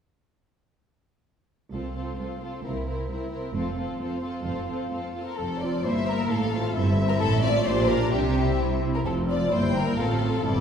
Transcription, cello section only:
1.73 C2
2.19 C2
2.64 C2
3.10 C2
3.56 F2
3.99 F2
4.45 F2
4.92 F2
5.40 F2
5.85 G2
6.31 A2
6.77 G2
7.21 A2
7.66 A#2
8.13 C3
8.60 C3
9.05 F2
9.52 G2
9.99 A2
10.45 G2

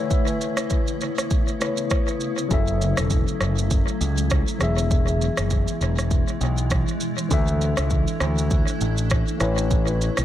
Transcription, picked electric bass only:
2.51 F#1
2.98 E1
3.41 F#1
4.01 C#2
4.61 E1
5.38 F#1
5.81 E1
6.41 B1
7.31 D2
7.78 C#2
8.21 D2
8.81 A1
9.41 A1
10.18 B1

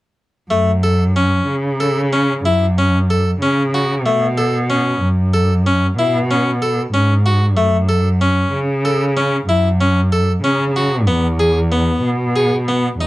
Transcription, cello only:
0.51 F#2
1.47 C#3
2.45 F#2
3.41 C#3
4.05 B2
5.02 F#2
5.98 B2
6.94 G#2
7.57 F#2
8.52 C#3
9.48 F#2
10.44 C#3
11.07 E2
12.04 B2
13.00 E2

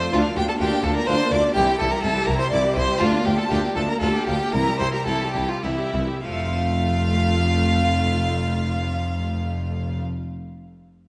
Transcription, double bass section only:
0.13 D2
0.36 D2
0.60 D2
0.85 D2
1.08 D2
1.32 D2
1.56 C2
1.81 C2
2.04 C2
2.28 C2
2.53 C2
2.76 C2
3.01 D2
3.25 D2
3.51 D2
3.76 D2
4.01 D2
4.27 D2
4.53 C2
4.80 C2
5.07 C2
5.35 C2
5.64 C2
5.94 C2
6.25 F1

